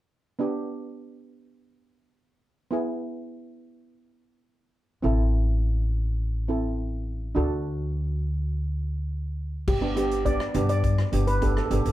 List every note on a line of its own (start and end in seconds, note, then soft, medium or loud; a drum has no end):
0.39 2.67 B3 medium
0.39 2.68 D4 medium
0.39 2.68 G4 medium
2.71 4.99 B3 medium
2.71 5.00 E4 soft
2.71 5.01 G#4 medium
5.03 7.32 A1 medium
5.03 6.45 C4 medium
5.03 6.46 E4 medium
5.03 6.47 A4 medium
6.48 7.36 C4 medium
6.48 7.36 E4 soft
6.48 7.36 A4 medium
7.35 9.64 D2 medium
7.35 9.63 D4 medium
7.35 9.64 F#4 medium
7.35 9.65 A4 medium
9.68 10.36 G1 medium
9.68 9.81 G4 medium
9.68 kick medium
9.68 crash medium
9.81 9.91 B3 medium
9.81 9.91 D4 medium
9.81 9.91 G4 medium
9.96 10.14 B3 medium
9.96 10.14 D4 medium
9.96 10.14 G4 medium
9.96 10.11 G4 medium
9.96 closed hi-hat medium
10.11 closed hi-hat soft
10.25 10.43 B3 medium
10.25 10.43 D4 soft
10.25 10.44 G4 medium
10.25 10.68 D5 medium
10.25 kick medium
10.25 closed hi-hat medium
10.40 cross-stick medium
10.54 11.00 G2 medium
10.54 10.90 B3 medium
10.54 10.90 D4 medium
10.54 10.90 G4 medium
10.54 closed hi-hat medium
10.69 11.29 D5 medium
10.69 closed hi-hat medium
10.84 kick loud
10.84 closed hi-hat medium
10.98 cross-stick medium
11.12 11.58 G1 medium
11.12 11.30 B3 medium
11.12 11.31 D4 medium
11.12 11.31 G4 medium
11.12 closed hi-hat medium
11.27 11.42 B4 medium
11.27 closed hi-hat medium
11.42 11.59 B3 medium
11.42 11.60 D4 medium
11.42 11.60 G4 medium
11.42 11.49 A4 medium
11.42 kick medium
11.42 closed hi-hat medium
11.50 11.57 A4 soft
11.57 11.65 A4 medium
11.57 cross-stick medium
11.66 11.73 A4 medium
11.70 11.83 G1 medium
11.70 11.92 B3 medium
11.70 11.92 D4 medium
11.70 11.92 G4 medium
11.70 11.80 A4 medium
11.70 closed hi-hat medium
11.81 11.87 A4 medium
11.86 11.92 F#1 medium
11.86 11.92 A4 medium
11.86 closed hi-hat medium